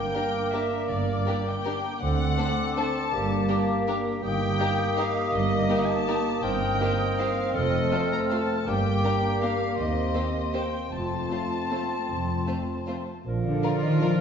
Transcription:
Already playing: bassoon A#3, french horn section A#3 D4, clarinet A#4, violin section G5, flute section D6
0.14 viola section A#3 D4, violin section G4 A#4
0.52 viola section A#3 D4, violin section G4 A#4 E5
0.89 double bass section G1, cello section G2, violin section D5
1.26 viola section A#3 D4, violin section G4 A#4
1.46 violin section G5
1.65 viola section A#3 D4, violin section G4 A#4
2.01 cello section D2, double bass section D2, bassoon C4, french horn section C4 D4, clarinet A4, violin section F#5, flute section D6
2.37 viola section A3 D4, violin section A4 C5
2.76 viola section A3 D4, violin section A4 C5 A5
3.13 double bass section G1, cello section G2, french horn section A#3, bassoon A#3, clarinet G4
3.49 viola section A#3 D4, violin section G4 A#4
3.87 viola section A#3 D4, violin section G4 A#4
4.23 double bass section G1, cello section G2, bassoon A#3, french horn section A#3 D#4, clarinet G4, violin section G5, flute section D#6
4.59 viola section A#3 D#4, violin section G4 A#4
4.97 viola section A#3 D#4, violin section G4 A#4 F5
5.33 double bass section G1, cello section G2, violin section D#5
5.69 viola section A#3 D#4, violin section G4 A#4
5.89 violin section A5
6.08 viola section A#3 D#4, violin section G4 A#4
6.43 double bass section G1, cello section G2, french horn section A#3 D#4, bassoon C4, clarinet A#4, violin section G5
6.81 viola section A#3 D#4, violin section G4 C5
7.18 viola section A#3 D#4, violin section G4 C5 F5
7.55 double bass section F1, cello section F2, french horn section A3 C4, clarinet A4, violin section D#5, flute section F6
7.92 viola section A3 F4, violin section A4 C5
8.12 violin section A#5
8.31 viola section A3 F4, violin section A4 C5 A5
8.66 double bass section G1, cello section G2, bassoon A#3, french horn section A#3 D4, clarinet G4, violin section G5, flute section D6
9.03 viola section A#3 D4, violin section G4 A#4
9.41 viola section A#3 D4, violin section G4 A#4 F5
9.77 double bass section D#2, cello section D#2, french horn section C4, violin section D#5, flute section C6
10.14 viola section A#3 C4, violin section G4 C5
10.54 viola section A#3 C4, violin section G4 C5 G5
10.91 double bass section F1, cello section F2, french horn section A3 C4, bassoon C4, clarinet F4, violin section A5, flute section C6
11.30 viola section A3 C4, violin section F4 C5
11.71 viola section A3 C4, violin section F4 C5
12.09 double bass section F1, cello section F2
12.47 viola section A3 C4, violin section F4 C5
12.87 viola section A3 C4, violin section F4 C5
13.25 double bass section A#1, bassoon F3, french horn section D4 F4, clarinet A#4
13.43 cello section D3, flute section D5
13.63 viola section F4, violin section F4 A#4 D5
13.82 cello section D#3, flute section D#5
14.01 cello section F3, violin section F4 A#4 D5, flute section F5

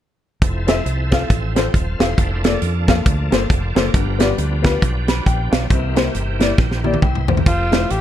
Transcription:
0.42 fingered electric bass F1, tonewheel organ F3 C4 E4 A4, kick, closed hi-hat
0.67 grand piano C4 F4 A4 E5, snare, closed hi-hat
0.86 fingered electric bass C2, closed hi-hat
1.11 grand piano C4 F4 A4 F5, kick, snare, closed hi-hat
1.30 fingered electric bass A1, kick, closed hi-hat
1.56 grand piano C4 F4 A4 C5, tonewheel organ G5, snare, closed hi-hat
1.74 fingered electric bass D#1, tonewheel organ A4 F5, kick, closed hi-hat
1.99 fingered electric bass E1, grand piano C4 F4 A4 F5, tonewheel organ E4 C5, snare, closed hi-hat
2.17 fingered electric bass F1, tonewheel organ F3 A#3 D4 A4, kick, closed hi-hat
2.44 grand piano A#3 F4 A4 D5, snare, closed hi-hat
2.62 fingered electric bass F2, closed hi-hat
2.87 grand piano A#3 F4 A4 F5, kick, snare, closed hi-hat
3.06 fingered electric bass D2, kick, closed hi-hat
3.31 fingered electric bass G1, grand piano A#3 F4 A4 C5, tonewheel organ A5, snare, closed hi-hat
3.41 tonewheel organ F5
3.50 fingered electric bass F1, tonewheel organ C4 A4 D5, kick, closed hi-hat
3.75 fingered electric bass F#1, grand piano A#3 F4 A4 C5, tonewheel organ D4 A#4, snare, closed hi-hat
3.94 fingered electric bass G1, grand piano G2, tonewheel organ F3 B3 D4 G4, kick, closed hi-hat
4.19 grand piano B3 F4 G4 D5, snare, closed hi-hat
4.38 fingered electric bass D2, closed hi-hat
4.62 grand piano B3 F4 G4 B4, kick, snare, closed hi-hat
4.82 fingered electric bass B1, kick, closed hi-hat
5.08 grand piano B5, snare, closed hi-hat
5.26 fingered electric bass A#1, grand piano G5, kick, closed hi-hat
5.52 fingered electric bass B1, grand piano F5, snare, closed hi-hat
5.70 fingered electric bass C2, grand piano C3, tonewheel organ E3 A#3 C4 G4, kick, closed hi-hat
5.95 grand piano A#3 E4 G4 C5, snare, closed hi-hat
6.15 fingered electric bass G1, closed hi-hat
6.39 grand piano A#3 E4 G4 D5, snare, closed hi-hat
6.58 fingered electric bass A#1, kick, snare
6.71 snare
6.84 grand piano A#3 E4 G4 D5, high tom
6.94 high tom
7.02 fingered electric bass C2, tonewheel organ E4 C5, grand piano G5, kick, mid tom
7.15 mid tom
7.28 tonewheel organ A#3 G4, grand piano C5, floor tom
7.37 floor tom
7.46 fingered electric bass F1, tonewheel organ F3 C4 A4 E5, tenor saxophone F4, kick, closed hi-hat
7.71 grand piano A3 E4 F4 C5, snare, closed hi-hat
7.90 fingered electric bass A1, tenor saxophone G4, closed hi-hat

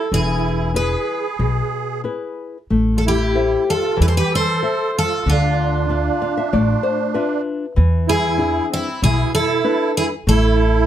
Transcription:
Already playing: twelve-string acoustic guitar A4
0.12 upright bass E1, nylon-string guitar E3, accordion E4, twelve-string acoustic guitar G#4
0.74 nylon-string guitar E4 G#4 B4, accordion G#4, twelve-string acoustic guitar B4
1.39 upright bass B1, nylon-string guitar B2
2.04 nylon-string guitar E4 G#4 B4
2.70 upright bass A1, nylon-string guitar A3
2.96 accordion F4, twelve-string acoustic guitar A4
3.05 accordion E4, twelve-string acoustic guitar G4
3.35 nylon-string guitar A4 C5 E5
3.69 accordion F4, twelve-string acoustic guitar A4
3.97 upright bass E2, nylon-string guitar E3, accordion E4
4.02 accordion A4, twelve-string acoustic guitar B4
4.08 twelve-string acoustic guitar C5
4.17 accordion G4, twelve-string acoustic guitar B4
4.32 accordion A4, twelve-string acoustic guitar C5
4.62 nylon-string guitar A4 C5 E5
4.95 accordion F4, twelve-string acoustic guitar A4
5.26 upright bass D2, nylon-string guitar D3, accordion D4, twelve-string acoustic guitar F4
5.89 nylon-string guitar D4 F4 E5
6.22 nylon-string guitar F5
6.37 nylon-string guitar E5
6.53 upright bass A1, nylon-string guitar A3 D5
6.83 nylon-string guitar C5
7.14 nylon-string guitar D4 F4 B4 E5
7.76 upright bass E2, nylon-string guitar E3
8.07 accordion E4, twelve-string acoustic guitar G#4
8.38 nylon-string guitar D4 E4 G#4
8.70 accordion C4, twelve-string acoustic guitar E4
9.02 upright bass B1, nylon-string guitar B2, accordion E4, twelve-string acoustic guitar G#4
9.34 accordion E4, twelve-string acoustic guitar A4
9.64 nylon-string guitar D4 E4 B4
9.97 accordion E4, twelve-string acoustic guitar G#4
10.27 upright bass A1, nylon-string guitar A3, accordion E4, twelve-string acoustic guitar A4

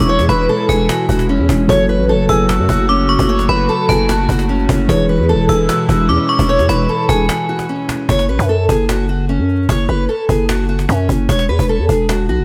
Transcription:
Already playing: analog synth pad B2 E3 G#3 E4, tine electric piano E3 E4 G#4 B4
0.00 808-style bass E1
0.09 steel-string acoustic guitar C#5, cajon slap
0.19 808-style bass E2, cajon slap
0.29 808-style bass E1, steel-string acoustic guitar B4, synth bell B5, cajon slap
0.42 cajon slap
0.49 steel-string acoustic guitar A4, cajon slap
0.56 cajon slap
0.62 cajon slap
0.69 808-style bass E1, steel-string acoustic guitar G#4, synth bell G#5, cajon bass
0.84 cajon slap
0.89 steel-string acoustic guitar F#4, cajon slap
1.09 808-style bass E1, steel-string acoustic guitar F#4, cajon bass
1.16 cajon slap
1.19 cajon slap
1.22 cajon slap
1.29 steel-string acoustic guitar C#4
1.36 808-style bass E2, cajon slap
1.42 cajon slap
1.49 808-style bass E1, cajon bass, cajon slap
1.68 808-style bass F#1, analog synth pad C#3 F#3 A3 F#4, tine electric piano F#3 F#4 A4 C#5, steel-string acoustic guitar C#5, cajon bass
1.89 steel-string acoustic guitar B4, cajon slap
1.96 808-style bass A1, cajon slap
2.02 cajon slap
2.09 steel-string acoustic guitar A4, cajon slap
2.14 808-style bass F#1
2.29 808-style bass F#1, steel-string acoustic guitar G#4, synth bell E6, cajon bass
2.49 steel-string acoustic guitar F#4, cajon slap
2.59 808-style bass F#2
2.69 808-style bass F#1, steel-string acoustic guitar F#4, cajon bass
2.89 steel-string acoustic guitar C#4, synth bell D6, cajon slap
3.09 synth bell C#6, cajon slap
3.19 808-style bass F#1, cajon bass
3.29 steel-string acoustic guitar C#5
3.39 cajon slap
3.49 808-style bass F#1, steel-string acoustic guitar B4, synth bell B5
3.69 steel-string acoustic guitar A4, cajon slap
3.89 808-style bass F#1, steel-string acoustic guitar G#4, synth bell A5, cajon bass
4.09 steel-string acoustic guitar F#4, cajon slap
4.29 808-style bass F#1, steel-string acoustic guitar F#4, cajon bass
4.39 cajon slap
4.49 steel-string acoustic guitar C#4, cajon slap
4.54 cajon slap
4.59 cajon slap
4.64 cajon slap
4.69 808-style bass F#1, cajon bass, cajon slap
4.88 808-style bass E1, analog synth pad B2 E3 G#3 E4, tine electric piano E3 E4 G#4 B4, steel-string acoustic guitar C#5, cajon bass
5.09 steel-string acoustic guitar B4, cajon slap
5.16 808-style bass E2, cajon slap
5.22 cajon slap
5.29 steel-string acoustic guitar A4, cajon slap
5.34 808-style bass E1
5.49 808-style bass E1, steel-string acoustic guitar G#4, synth bell E6, cajon bass
5.69 steel-string acoustic guitar F#4, cajon slap
5.89 808-style bass E1, steel-string acoustic guitar F#4, cajon bass
6.09 808-style bass E2, steel-string acoustic guitar C#4, synth bell D6, cajon slap
6.29 synth bell C#6, cajon slap
6.39 808-style bass E1, cajon bass
6.49 steel-string acoustic guitar C#5, cajon slap
6.59 808-style bass E2, cajon slap
6.69 808-style bass E1, steel-string acoustic guitar B4, synth bell B5, cajon slap
6.76 cajon slap
6.82 cajon slap
6.89 steel-string acoustic guitar A4, cajon slap
6.96 cajon slap
7.02 cajon slap
7.09 808-style bass E1, steel-string acoustic guitar G#4, synth bell G#5, cajon bass
7.14 cajon slap
7.19 cajon slap
7.24 cajon slap
7.29 steel-string acoustic guitar F#4, cajon slap
7.49 steel-string acoustic guitar F#4, cajon slap
7.56 cajon slap
7.59 cajon slap
7.62 cajon slap
7.69 steel-string acoustic guitar C#4, cajon slap
7.76 cajon slap
7.82 cajon slap
7.89 cajon slap
8.09 808-style bass F#1, steel-string acoustic guitar C#5, cajon bass
8.19 cajon slap
8.29 808-style bass A1, steel-string acoustic guitar B4, cajon slap
8.39 808-style bass F#2, cajon bass
8.49 steel-string acoustic guitar A4
8.69 808-style bass F#1, steel-string acoustic guitar G#4, cajon bass
8.82 cajon slap
8.89 steel-string acoustic guitar F#4, cajon slap
9.09 steel-string acoustic guitar F#4
9.29 steel-string acoustic guitar C#4, cajon slap
9.39 808-style bass F#2
9.49 cajon slap
9.56 cajon slap
9.62 cajon slap
9.69 808-style bass F#1, steel-string acoustic guitar C#5, cajon bass
9.89 808-style bass F#1, steel-string acoustic guitar B4, cajon slap
10.09 steel-string acoustic guitar A4, cajon slap
10.29 808-style bass F#1, steel-string acoustic guitar G#4, cajon bass
10.49 steel-string acoustic guitar F#4, cajon slap
10.54 cajon slap
10.59 cajon slap
10.64 cajon slap
10.69 steel-string acoustic guitar F#4, cajon slap
10.79 cajon slap
10.89 808-style bass F#2, steel-string acoustic guitar C#4, cajon bass
11.09 808-style bass F#1, cajon bass
11.29 808-style bass E1, steel-string acoustic guitar C#5, cajon bass
11.39 cajon slap
11.49 808-style bass E2, steel-string acoustic guitar B4, cajon slap
11.59 808-style bass E1, cajon bass
11.69 steel-string acoustic guitar A4, cajon slap
11.79 808-style bass E2
11.89 808-style bass E1, steel-string acoustic guitar G#4, cajon bass
12.02 cajon slap
12.09 steel-string acoustic guitar F#4, cajon slap
12.29 808-style bass B1, steel-string acoustic guitar F#4
12.39 808-style bass E1

